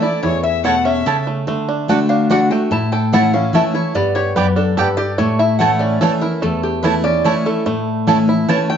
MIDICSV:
0, 0, Header, 1, 6, 480
1, 0, Start_track
1, 0, Tempo, 412939
1, 274, Time_signature, 3, 2, 24, 8
1, 10197, End_track
2, 0, Start_track
2, 0, Title_t, "Fiddle"
2, 0, Program_c, 0, 110
2, 29, Note_on_c, 0, 74, 72
2, 276, Note_on_c, 0, 73, 75
2, 294, Note_off_c, 0, 74, 0
2, 506, Note_off_c, 0, 73, 0
2, 513, Note_on_c, 0, 76, 83
2, 737, Note_off_c, 0, 76, 0
2, 755, Note_on_c, 0, 78, 86
2, 980, Note_off_c, 0, 78, 0
2, 994, Note_on_c, 0, 76, 80
2, 1442, Note_off_c, 0, 76, 0
2, 10197, End_track
3, 0, Start_track
3, 0, Title_t, "Resonator guitar played with a steel bar"
3, 0, Program_c, 1, 25
3, 22, Note_on_c, 1, 74, 83
3, 258, Note_off_c, 1, 74, 0
3, 262, Note_on_c, 1, 73, 89
3, 503, Note_off_c, 1, 73, 0
3, 505, Note_on_c, 1, 76, 96
3, 743, Note_off_c, 1, 76, 0
3, 749, Note_on_c, 1, 78, 91
3, 987, Note_off_c, 1, 78, 0
3, 988, Note_on_c, 1, 76, 88
3, 1440, Note_off_c, 1, 76, 0
3, 2200, Note_on_c, 1, 79, 87
3, 2430, Note_on_c, 1, 77, 86
3, 2433, Note_off_c, 1, 79, 0
3, 2666, Note_off_c, 1, 77, 0
3, 2684, Note_on_c, 1, 78, 78
3, 2910, Note_off_c, 1, 78, 0
3, 2915, Note_on_c, 1, 79, 94
3, 3149, Note_off_c, 1, 79, 0
3, 3157, Note_on_c, 1, 81, 100
3, 3391, Note_off_c, 1, 81, 0
3, 3396, Note_on_c, 1, 79, 97
3, 3629, Note_off_c, 1, 79, 0
3, 3642, Note_on_c, 1, 78, 90
3, 3872, Note_off_c, 1, 78, 0
3, 3877, Note_on_c, 1, 77, 92
3, 4109, Note_off_c, 1, 77, 0
3, 4123, Note_on_c, 1, 76, 86
3, 4354, Note_off_c, 1, 76, 0
3, 4355, Note_on_c, 1, 73, 84
3, 4588, Note_off_c, 1, 73, 0
3, 4594, Note_on_c, 1, 74, 100
3, 4819, Note_off_c, 1, 74, 0
3, 4824, Note_on_c, 1, 73, 96
3, 5061, Note_off_c, 1, 73, 0
3, 5066, Note_on_c, 1, 71, 73
3, 5303, Note_off_c, 1, 71, 0
3, 5308, Note_on_c, 1, 69, 84
3, 5542, Note_off_c, 1, 69, 0
3, 5547, Note_on_c, 1, 71, 80
3, 5777, Note_on_c, 1, 74, 112
3, 5785, Note_off_c, 1, 71, 0
3, 6019, Note_off_c, 1, 74, 0
3, 6023, Note_on_c, 1, 73, 82
3, 6263, Note_off_c, 1, 73, 0
3, 6270, Note_on_c, 1, 76, 91
3, 6490, Note_off_c, 1, 76, 0
3, 6495, Note_on_c, 1, 78, 94
3, 6734, Note_on_c, 1, 74, 82
3, 6739, Note_off_c, 1, 78, 0
3, 6979, Note_off_c, 1, 74, 0
3, 6979, Note_on_c, 1, 73, 79
3, 7221, Note_off_c, 1, 73, 0
3, 7223, Note_on_c, 1, 70, 82
3, 7461, Note_off_c, 1, 70, 0
3, 7467, Note_on_c, 1, 69, 77
3, 7705, Note_off_c, 1, 69, 0
3, 7710, Note_on_c, 1, 67, 86
3, 7935, Note_on_c, 1, 71, 83
3, 7944, Note_off_c, 1, 67, 0
3, 8178, Note_off_c, 1, 71, 0
3, 8181, Note_on_c, 1, 74, 110
3, 8419, Note_off_c, 1, 74, 0
3, 8422, Note_on_c, 1, 73, 73
3, 8661, Note_off_c, 1, 73, 0
3, 8673, Note_on_c, 1, 69, 78
3, 9345, Note_off_c, 1, 69, 0
3, 9875, Note_on_c, 1, 81, 98
3, 10104, Note_off_c, 1, 81, 0
3, 10108, Note_on_c, 1, 79, 105
3, 10197, Note_off_c, 1, 79, 0
3, 10197, End_track
4, 0, Start_track
4, 0, Title_t, "Mandolin"
4, 0, Program_c, 2, 25
4, 753, Note_on_c, 2, 57, 87
4, 756, Note_on_c, 2, 64, 94
4, 761, Note_on_c, 2, 73, 109
4, 764, Note_on_c, 2, 81, 98
4, 859, Note_off_c, 2, 57, 0
4, 861, Note_off_c, 2, 64, 0
4, 864, Note_off_c, 2, 73, 0
4, 865, Note_off_c, 2, 81, 0
4, 1237, Note_on_c, 2, 57, 79
4, 1239, Note_on_c, 2, 64, 82
4, 1246, Note_on_c, 2, 73, 99
4, 1249, Note_on_c, 2, 81, 96
4, 1342, Note_off_c, 2, 57, 0
4, 1343, Note_off_c, 2, 64, 0
4, 1346, Note_off_c, 2, 73, 0
4, 1348, Note_off_c, 2, 81, 0
4, 2198, Note_on_c, 2, 57, 86
4, 2202, Note_on_c, 2, 66, 87
4, 2206, Note_on_c, 2, 74, 93
4, 2209, Note_on_c, 2, 78, 96
4, 2303, Note_off_c, 2, 57, 0
4, 2305, Note_off_c, 2, 66, 0
4, 2307, Note_off_c, 2, 74, 0
4, 2308, Note_off_c, 2, 78, 0
4, 2678, Note_on_c, 2, 57, 88
4, 2682, Note_on_c, 2, 66, 96
4, 2688, Note_on_c, 2, 74, 99
4, 2691, Note_on_c, 2, 78, 91
4, 2783, Note_off_c, 2, 57, 0
4, 2785, Note_off_c, 2, 66, 0
4, 2788, Note_off_c, 2, 74, 0
4, 2790, Note_off_c, 2, 78, 0
4, 3641, Note_on_c, 2, 57, 103
4, 3644, Note_on_c, 2, 64, 97
4, 3648, Note_on_c, 2, 73, 95
4, 3653, Note_on_c, 2, 81, 103
4, 3744, Note_off_c, 2, 57, 0
4, 3746, Note_off_c, 2, 64, 0
4, 3748, Note_off_c, 2, 73, 0
4, 3750, Note_off_c, 2, 81, 0
4, 4117, Note_on_c, 2, 57, 80
4, 4122, Note_on_c, 2, 64, 88
4, 4123, Note_on_c, 2, 73, 90
4, 4129, Note_on_c, 2, 81, 107
4, 4222, Note_off_c, 2, 57, 0
4, 4225, Note_off_c, 2, 64, 0
4, 4225, Note_off_c, 2, 73, 0
4, 4228, Note_off_c, 2, 81, 0
4, 5077, Note_on_c, 2, 59, 94
4, 5079, Note_on_c, 2, 67, 102
4, 5086, Note_on_c, 2, 74, 103
4, 5087, Note_on_c, 2, 79, 98
4, 5182, Note_off_c, 2, 59, 0
4, 5183, Note_off_c, 2, 67, 0
4, 5186, Note_off_c, 2, 74, 0
4, 5187, Note_off_c, 2, 79, 0
4, 5557, Note_on_c, 2, 59, 91
4, 5558, Note_on_c, 2, 67, 86
4, 5566, Note_on_c, 2, 74, 94
4, 5566, Note_on_c, 2, 79, 108
4, 5662, Note_off_c, 2, 59, 0
4, 5662, Note_off_c, 2, 67, 0
4, 5666, Note_off_c, 2, 74, 0
4, 5666, Note_off_c, 2, 79, 0
4, 6512, Note_on_c, 2, 57, 88
4, 6519, Note_on_c, 2, 64, 101
4, 6522, Note_on_c, 2, 73, 99
4, 6523, Note_on_c, 2, 81, 94
4, 6619, Note_off_c, 2, 57, 0
4, 6622, Note_off_c, 2, 64, 0
4, 6624, Note_off_c, 2, 73, 0
4, 6624, Note_off_c, 2, 81, 0
4, 6994, Note_on_c, 2, 57, 85
4, 6997, Note_on_c, 2, 64, 93
4, 7001, Note_on_c, 2, 73, 96
4, 7006, Note_on_c, 2, 81, 101
4, 7099, Note_off_c, 2, 57, 0
4, 7101, Note_off_c, 2, 64, 0
4, 7103, Note_off_c, 2, 73, 0
4, 7105, Note_off_c, 2, 81, 0
4, 7952, Note_on_c, 2, 57, 89
4, 7953, Note_on_c, 2, 64, 99
4, 7958, Note_on_c, 2, 73, 100
4, 7961, Note_on_c, 2, 81, 100
4, 8058, Note_off_c, 2, 57, 0
4, 8059, Note_off_c, 2, 64, 0
4, 8061, Note_off_c, 2, 73, 0
4, 8062, Note_off_c, 2, 81, 0
4, 8430, Note_on_c, 2, 57, 94
4, 8432, Note_on_c, 2, 64, 96
4, 8435, Note_on_c, 2, 73, 91
4, 8437, Note_on_c, 2, 81, 103
4, 8536, Note_off_c, 2, 57, 0
4, 8537, Note_off_c, 2, 64, 0
4, 8539, Note_off_c, 2, 73, 0
4, 8540, Note_off_c, 2, 81, 0
4, 9388, Note_on_c, 2, 57, 87
4, 9391, Note_on_c, 2, 64, 109
4, 9394, Note_on_c, 2, 73, 94
4, 9400, Note_on_c, 2, 81, 92
4, 9495, Note_off_c, 2, 57, 0
4, 9496, Note_off_c, 2, 64, 0
4, 9498, Note_off_c, 2, 73, 0
4, 9501, Note_off_c, 2, 81, 0
4, 9864, Note_on_c, 2, 57, 94
4, 9865, Note_on_c, 2, 64, 91
4, 9872, Note_on_c, 2, 73, 96
4, 9875, Note_on_c, 2, 81, 99
4, 9972, Note_off_c, 2, 57, 0
4, 9973, Note_off_c, 2, 64, 0
4, 9976, Note_off_c, 2, 73, 0
4, 9978, Note_off_c, 2, 81, 0
4, 10197, End_track
5, 0, Start_track
5, 0, Title_t, "Five-string banjo"
5, 0, Program_c, 3, 105
5, 0, Note_on_c, 3, 57, 67
5, 0, Note_on_c, 3, 69, 68
5, 32, Note_on_c, 3, 64, 55
5, 271, Note_on_c, 3, 52, 66
5, 467, Note_off_c, 3, 69, 0
5, 706, Note_off_c, 3, 64, 0
5, 746, Note_off_c, 3, 57, 0
5, 751, Note_on_c, 3, 57, 58
5, 947, Note_off_c, 3, 52, 0
5, 992, Note_on_c, 3, 61, 60
5, 1237, Note_on_c, 3, 69, 67
5, 1427, Note_off_c, 3, 57, 0
5, 1476, Note_on_c, 3, 57, 58
5, 1666, Note_off_c, 3, 61, 0
5, 1706, Note_off_c, 3, 57, 0
5, 1717, Note_off_c, 3, 69, 0
5, 1720, Note_on_c, 3, 57, 74
5, 1960, Note_on_c, 3, 62, 63
5, 2203, Note_on_c, 3, 66, 62
5, 2392, Note_off_c, 3, 57, 0
5, 2427, Note_off_c, 3, 62, 0
5, 2441, Note_on_c, 3, 62, 59
5, 2666, Note_off_c, 3, 66, 0
5, 2680, Note_on_c, 3, 66, 72
5, 2929, Note_on_c, 3, 57, 56
5, 3111, Note_off_c, 3, 62, 0
5, 3158, Note_off_c, 3, 66, 0
5, 3162, Note_on_c, 3, 64, 61
5, 3163, Note_off_c, 3, 57, 0
5, 3403, Note_on_c, 3, 69, 60
5, 3632, Note_off_c, 3, 64, 0
5, 3646, Note_on_c, 3, 64, 60
5, 3883, Note_on_c, 3, 61, 60
5, 4072, Note_off_c, 3, 69, 0
5, 4122, Note_on_c, 3, 57, 75
5, 4314, Note_off_c, 3, 64, 0
5, 4361, Note_on_c, 3, 64, 56
5, 4552, Note_off_c, 3, 61, 0
5, 4594, Note_off_c, 3, 57, 0
5, 4598, Note_on_c, 3, 59, 81
5, 4599, Note_off_c, 3, 64, 0
5, 4833, Note_on_c, 3, 67, 63
5, 5055, Note_off_c, 3, 59, 0
5, 5069, Note_on_c, 3, 59, 59
5, 5303, Note_on_c, 3, 62, 55
5, 5506, Note_off_c, 3, 67, 0
5, 5547, Note_on_c, 3, 69, 69
5, 5746, Note_off_c, 3, 59, 0
5, 5786, Note_on_c, 3, 67, 59
5, 5981, Note_off_c, 3, 62, 0
5, 6023, Note_on_c, 3, 57, 79
5, 6031, Note_off_c, 3, 67, 0
5, 6031, Note_off_c, 3, 69, 0
5, 6267, Note_on_c, 3, 64, 64
5, 6504, Note_off_c, 3, 57, 0
5, 6509, Note_on_c, 3, 57, 57
5, 6748, Note_on_c, 3, 61, 56
5, 6985, Note_on_c, 3, 69, 69
5, 7225, Note_off_c, 3, 64, 0
5, 7230, Note_on_c, 3, 64, 58
5, 7459, Note_off_c, 3, 57, 0
5, 7464, Note_on_c, 3, 57, 80
5, 7944, Note_off_c, 3, 64, 0
5, 7949, Note_on_c, 3, 64, 58
5, 8141, Note_off_c, 3, 57, 0
5, 8187, Note_off_c, 3, 61, 0
5, 8191, Note_on_c, 3, 61, 59
5, 8419, Note_off_c, 3, 64, 0
5, 8433, Note_on_c, 3, 64, 68
5, 8612, Note_off_c, 3, 69, 0
5, 8674, Note_on_c, 3, 57, 58
5, 8863, Note_off_c, 3, 61, 0
5, 8892, Note_off_c, 3, 57, 0
5, 8906, Note_on_c, 3, 57, 81
5, 9105, Note_off_c, 3, 64, 0
5, 9385, Note_on_c, 3, 69, 59
5, 9582, Note_off_c, 3, 57, 0
5, 9634, Note_on_c, 3, 64, 63
5, 9870, Note_on_c, 3, 52, 70
5, 10060, Note_off_c, 3, 69, 0
5, 10116, Note_on_c, 3, 57, 56
5, 10197, Note_off_c, 3, 52, 0
5, 10197, Note_off_c, 3, 57, 0
5, 10197, Note_off_c, 3, 64, 0
5, 10197, End_track
6, 0, Start_track
6, 0, Title_t, "Steel-string acoustic guitar"
6, 0, Program_c, 4, 25
6, 21, Note_on_c, 4, 64, 59
6, 41, Note_on_c, 4, 61, 44
6, 258, Note_off_c, 4, 64, 0
6, 268, Note_off_c, 4, 61, 0
6, 268, Note_on_c, 4, 40, 91
6, 746, Note_on_c, 4, 47, 87
6, 1185, Note_off_c, 4, 40, 0
6, 1208, Note_off_c, 4, 47, 0
6, 1233, Note_on_c, 4, 49, 82
6, 1691, Note_off_c, 4, 49, 0
6, 1710, Note_on_c, 4, 50, 94
6, 2175, Note_off_c, 4, 50, 0
6, 2189, Note_on_c, 4, 50, 79
6, 2199, Note_on_c, 4, 57, 88
6, 2204, Note_on_c, 4, 62, 96
6, 2211, Note_on_c, 4, 66, 100
6, 2650, Note_off_c, 4, 50, 0
6, 2655, Note_off_c, 4, 57, 0
6, 2657, Note_off_c, 4, 62, 0
6, 2661, Note_off_c, 4, 66, 0
6, 2669, Note_on_c, 4, 50, 82
6, 2679, Note_on_c, 4, 57, 83
6, 2686, Note_on_c, 4, 62, 85
6, 2692, Note_on_c, 4, 66, 102
6, 2893, Note_off_c, 4, 66, 0
6, 2905, Note_off_c, 4, 50, 0
6, 2907, Note_on_c, 4, 66, 60
6, 2910, Note_off_c, 4, 57, 0
6, 2913, Note_off_c, 4, 62, 0
6, 2930, Note_on_c, 4, 62, 49
6, 3142, Note_off_c, 4, 66, 0
6, 3148, Note_on_c, 4, 45, 91
6, 3154, Note_off_c, 4, 62, 0
6, 3633, Note_on_c, 4, 52, 89
6, 3642, Note_on_c, 4, 57, 92
6, 3649, Note_on_c, 4, 61, 95
6, 3653, Note_on_c, 4, 64, 89
6, 3859, Note_off_c, 4, 64, 0
6, 3867, Note_off_c, 4, 52, 0
6, 3871, Note_off_c, 4, 57, 0
6, 3873, Note_on_c, 4, 64, 59
6, 3875, Note_off_c, 4, 61, 0
6, 3893, Note_on_c, 4, 61, 50
6, 4065, Note_off_c, 4, 45, 0
6, 4103, Note_on_c, 4, 52, 88
6, 4105, Note_off_c, 4, 64, 0
6, 4106, Note_off_c, 4, 61, 0
6, 4115, Note_on_c, 4, 57, 85
6, 4120, Note_on_c, 4, 61, 90
6, 4126, Note_on_c, 4, 64, 97
6, 4332, Note_off_c, 4, 64, 0
6, 4342, Note_off_c, 4, 52, 0
6, 4346, Note_on_c, 4, 64, 61
6, 4348, Note_off_c, 4, 57, 0
6, 4350, Note_off_c, 4, 61, 0
6, 4365, Note_on_c, 4, 61, 45
6, 4582, Note_off_c, 4, 64, 0
6, 4587, Note_on_c, 4, 43, 93
6, 4591, Note_off_c, 4, 61, 0
6, 5064, Note_off_c, 4, 43, 0
6, 5068, Note_on_c, 4, 42, 86
6, 5529, Note_off_c, 4, 42, 0
6, 5552, Note_on_c, 4, 43, 85
6, 6010, Note_off_c, 4, 43, 0
6, 6032, Note_on_c, 4, 45, 93
6, 6504, Note_on_c, 4, 52, 91
6, 6513, Note_on_c, 4, 57, 97
6, 6517, Note_on_c, 4, 61, 93
6, 6524, Note_on_c, 4, 64, 100
6, 6945, Note_off_c, 4, 45, 0
6, 6965, Note_off_c, 4, 52, 0
6, 6970, Note_off_c, 4, 57, 0
6, 6972, Note_off_c, 4, 61, 0
6, 6975, Note_off_c, 4, 64, 0
6, 6985, Note_on_c, 4, 52, 85
6, 6990, Note_on_c, 4, 57, 94
6, 7000, Note_on_c, 4, 61, 85
6, 7004, Note_on_c, 4, 64, 91
6, 7214, Note_off_c, 4, 64, 0
6, 7221, Note_off_c, 4, 52, 0
6, 7224, Note_off_c, 4, 57, 0
6, 7228, Note_on_c, 4, 64, 59
6, 7229, Note_off_c, 4, 61, 0
6, 7253, Note_on_c, 4, 61, 41
6, 7461, Note_off_c, 4, 64, 0
6, 7473, Note_on_c, 4, 40, 94
6, 7474, Note_off_c, 4, 61, 0
6, 7944, Note_on_c, 4, 52, 90
6, 7952, Note_on_c, 4, 57, 87
6, 7959, Note_on_c, 4, 61, 88
6, 7966, Note_on_c, 4, 64, 95
6, 8177, Note_off_c, 4, 64, 0
6, 8181, Note_off_c, 4, 52, 0
6, 8184, Note_off_c, 4, 57, 0
6, 8188, Note_off_c, 4, 61, 0
6, 8191, Note_on_c, 4, 64, 61
6, 8212, Note_on_c, 4, 61, 48
6, 8385, Note_off_c, 4, 40, 0
6, 8421, Note_on_c, 4, 52, 86
6, 8422, Note_off_c, 4, 64, 0
6, 8423, Note_off_c, 4, 61, 0
6, 8429, Note_on_c, 4, 57, 86
6, 8437, Note_on_c, 4, 61, 101
6, 8444, Note_on_c, 4, 64, 93
6, 8648, Note_off_c, 4, 64, 0
6, 8658, Note_off_c, 4, 52, 0
6, 8662, Note_off_c, 4, 57, 0
6, 8662, Note_on_c, 4, 64, 59
6, 8666, Note_off_c, 4, 61, 0
6, 8683, Note_on_c, 4, 61, 50
6, 8897, Note_off_c, 4, 64, 0
6, 8903, Note_on_c, 4, 45, 97
6, 8908, Note_off_c, 4, 61, 0
6, 9379, Note_on_c, 4, 52, 89
6, 9388, Note_on_c, 4, 57, 94
6, 9392, Note_on_c, 4, 61, 94
6, 9400, Note_on_c, 4, 64, 101
6, 9607, Note_off_c, 4, 64, 0
6, 9616, Note_off_c, 4, 52, 0
6, 9621, Note_off_c, 4, 57, 0
6, 9621, Note_on_c, 4, 64, 62
6, 9623, Note_off_c, 4, 61, 0
6, 9640, Note_on_c, 4, 61, 51
6, 9818, Note_off_c, 4, 45, 0
6, 9856, Note_off_c, 4, 64, 0
6, 9862, Note_on_c, 4, 52, 88
6, 9863, Note_off_c, 4, 61, 0
6, 9870, Note_on_c, 4, 57, 88
6, 9877, Note_on_c, 4, 61, 99
6, 9885, Note_on_c, 4, 64, 98
6, 10092, Note_off_c, 4, 64, 0
6, 10098, Note_off_c, 4, 52, 0
6, 10102, Note_off_c, 4, 57, 0
6, 10105, Note_off_c, 4, 61, 0
6, 10106, Note_on_c, 4, 64, 58
6, 10127, Note_on_c, 4, 61, 49
6, 10197, Note_off_c, 4, 61, 0
6, 10197, Note_off_c, 4, 64, 0
6, 10197, End_track
0, 0, End_of_file